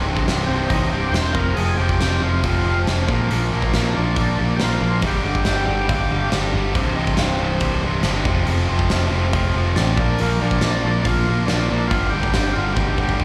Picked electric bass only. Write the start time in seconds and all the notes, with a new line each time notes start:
0.06 C1
0.26 C1
0.49 C1
0.71 C1
0.91 C1
1.12 E1
1.35 F1
1.56 F1
1.78 F1
2.01 F1
2.22 F1
2.44 F1
2.65 F1
2.87 F1
3.09 A#1
3.31 A#1
3.53 A#1
3.74 A#1
3.96 A#1
4.17 A#1
4.39 A#1
4.61 A#1
4.81 A#1
5.03 G1
5.25 G1
5.46 G1
5.68 G1
5.90 G1
6.11 G1
6.32 G1
6.54 G1
6.76 C1
6.97 C1
7.19 C1
7.40 C1
7.61 C1
7.83 C1
8.04 G1
8.26 F1
8.47 F1
8.69 F1
8.90 F1
9.11 F1
9.34 F1
9.54 F1
9.76 A1
9.98 A#1
10.20 A#1
10.42 A#1
10.62 A#1
10.83 A#1
11.06 A#1
11.28 A#1
11.50 A#1
11.71 A#1
11.92 G1
12.14 G1
12.36 G1
12.57 G1
12.77 G1
12.98 G1
13.20 G1